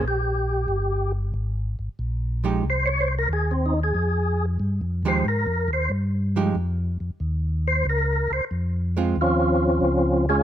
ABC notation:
X:1
M:4/4
L:1/16
Q:"Swing" 1/4=92
K:Fm
V:1 name="Tonewheel organ"
G6 z8 z2 | c d c B A C E A4 z3 c2 | B2 c2 z8 z2 c2 | B2 c2 z4 [F,CDF]6 [A,DFA]2 |]
V:2 name="Hollow-body jazz guitar"
z12 z2 [F,A,EG]2 | z12 z2 [F,A,EG]2 | z6 [F,A,EG]2 z8 | z6 [A,CF]2 z8 |]
V:3 name="Tonewheel organ" clef=bass
B,,,4 G,,,4 A,,,2 A,,,2 B,,,4 | C,,4 E,,4 F,,4 (3G,,2 F,,2 E,,2 | (3A,,2 F,,2 E,,2 G,,4 F,,2 F,,2 E,,4 | D,,2 D,,2 F,,4 E,,4 D,,4 |]